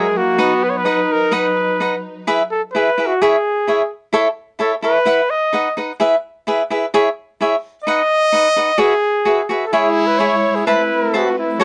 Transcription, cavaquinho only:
0.38 D#4 B4 D#5 F#5
0.85 D#4 B4 D#5 F#5
1.31 D#4 B4 D#5 F#5
1.80 D#4 B4 D#5 F#5
2.27 E4 G#4 B4 E5
2.75 E4 G#4 B4 E5
2.98 E4 G#4 B4 E5
3.22 E4 G#4 C#5 E5
3.67 E4 G#4 C#5 E5
4.13 E4 A4 C#5 E5
4.59 E4 A4 C#5 E5
4.82 E4 A4 C#5 E5
5.05 E4 B4 E5 F#5
5.53 D#4 B4 D#5 F#5
5.77 D#4 B4 D#5 F#5
6.00 E4 G#4 B4 E5
6.47 E4 G#4 B4 E5
6.70 E4 G#4 B4 E5
6.94 E4 G#4 C#5 E5
7.41 E4 G#4 C#5 E5
7.87 D#4 B4 D#5 F#5
8.32 D#4 B4 D#5 F#5
8.56 D#4 B4 D#5 F#5
8.78 F#4 G#4 B4 E5
9.25 F#4 G#4 B4 E5
9.49 F#4 G#4 B4 E5
9.73 E4 G#4 C#5 E5
10.19 E4 G#4 C#5 E5
10.67 C5 E5 A5 B5
11.14 C5 E5 A5 B5
11.60 F#4 A4 C#5

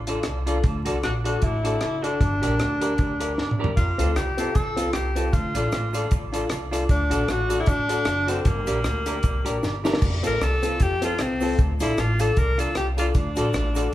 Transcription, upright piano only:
0.08 D4 F4 A4
0.47 D4 F4 A4
0.86 D4 F#4 A4
1.25 D4 F#4 A4
1.64 D4 F#4 A4
2.03 D4 F#4 A4
2.42 D4 G4 A#4
2.81 D4 G4 A#4
3.20 D4 G4 A#4
3.58 D4 G4 A#4
3.98 C4 F4 A4
4.37 C4 F4 A4
4.76 C4 F4 A4
5.16 C4 F4 A4
5.55 D4 F4 A4
5.93 D4 F4 A4
6.32 D4 F4 A4
6.72 D4 F4 A4
7.10 D4 F#4 A4
7.49 D4 F#4 A4
7.89 D4 F#4 A4
8.28 D4 F#4 A4
8.67 D4 G4 A#4
9.06 D4 G4 A#4
9.45 D4 G4 A#4
9.84 D4 G4 A#4
10.23 C4 F4 A4
10.63 C4 F4 A4
11.02 C4 F4 A4
11.41 C4 F4 A4
11.80 D4 F4 A4
12.19 D4 F4 A4
12.58 D4 F4 A4
12.97 D4 F4 A4
13.35 D4 F#4 A4
13.75 D4 F#4 A4

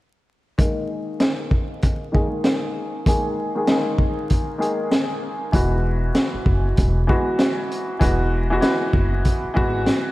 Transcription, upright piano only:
0.58 D#3 G#3 A#3 G#4
2.12 D#3 G#3 A#3 G#4
3.06 D#3 G#3 A#3 G#4
3.55 D#3 G#3 A#3 G#4
3.68 D#3 G#3 A#3 G#4
4.58 D#3 G#3 A#3 G#4
5.52 E3 G#3 B3 F#4
7.07 E3 G#3 B3 F#4
7.99 E3 G#3 B3 F#4
8.50 E3 G#3 B3 F#4
8.61 E3 G#3 B3 F#4
9.54 E3 G#3 B3 F#4

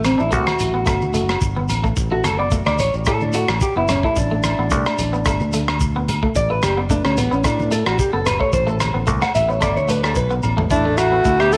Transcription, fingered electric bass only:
Already playing: A1
0.20 A1
0.32 C2
0.60 A1
0.87 G1
1.03 D2
1.15 F#1
1.42 G1
1.70 A1
1.97 A1
2.24 F#1
2.67 D2
2.80 A1
2.94 A1
3.07 A2
3.49 A1
3.76 F#1
4.17 A1
4.59 A1
4.71 C2
5.00 A1
5.26 G1
5.41 D2
6.36 A1
6.64 F#1
7.05 D2
7.18 A1
7.33 A1
7.44 A2
7.87 A1
8.14 F#1
8.53 A1
8.95 A1
9.07 C2
9.35 A1
9.62 G1
9.77 D2
10.16 B1
10.44 A1
10.70 A1
11.25 D2

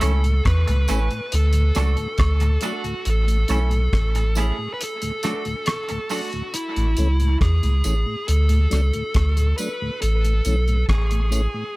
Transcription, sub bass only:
0.02 C#2
0.46 E2
0.69 C#2
0.90 A1
1.33 D2
1.77 C#2
2.19 D2
3.06 A1
3.50 B1
3.93 A1
6.77 A1
6.98 C#2
7.41 E2
7.64 C#2
7.86 A1
8.29 D2
8.72 C#2
9.15 D2
10.03 A1
10.46 B1
10.89 A1

